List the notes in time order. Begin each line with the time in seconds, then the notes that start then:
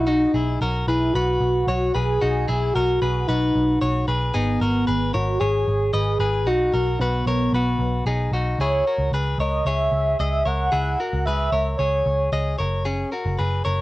Already playing: B1
0.07 D#4 F#4
0.34 B1 E4 G#4
0.61 B1 F#4 A#4
0.87 B1 E4 G#4 B4
1.13 B1 F#4 B4
1.40 B1
1.67 B1 F#4 C#5
1.94 B1 G#4 B4
2.21 B1 D#4 F#4
2.48 B1 E4 G#4
2.73 B1 F#4 A#4
3.02 B1 G#4 B4
3.27 B1 D#4 F#4 B4
3.55 B1
3.82 B1 F#4 C#5
4.08 B1 G#4 B4
4.33 G#1 B3 D#4 G#4
4.61 G#1 F#4 A#4
4.87 G#1 G#4 B4
5.13 G#1 F#4 A#4 C#5
5.39 G#1 G#4 C#5
5.66 G#1 G#4
5.93 G#1 G#4 B4 D#5
6.19 G#1 G#4 B4
6.46 B1 D#4 F#4
6.74 B1 F#4 A#4
6.99 B1 B3 F#4 B4
7.26 B1 A#4 C#5
7.53 B1 F#4 B4
7.79 B1
8.06 B1 D#4 G#4
8.32 B1 D#4 F#4
8.59 C#2 E4 G#4 C#5
8.87 F#4 A#4
8.98 C#2
9.12 C#2 G#4 B4
9.38 C#2 A#4 C#5 D#5
9.65 C#2 G#4 C#5 E5
9.92 C#2
10.20 C#2 G#4 D#5
10.45 C#2 A#4 C#5 F#5
10.72 C#2 E4 G#4
11.00 F#4 A#4
11.13 C#2
11.26 C#2 G#4 B4 E5
11.52 C#2 A#4 C#5
11.77 C#2 G#4 C#5
12.06 C#2
12.32 C#2 G#4 D#5
12.59 F#1 A#4 C#5
12.85 C#4 G#4
13.12 F#4 A#4
13.26 F#1
13.39 F#1 G#4 B4
13.65 F#1 A#4 C#5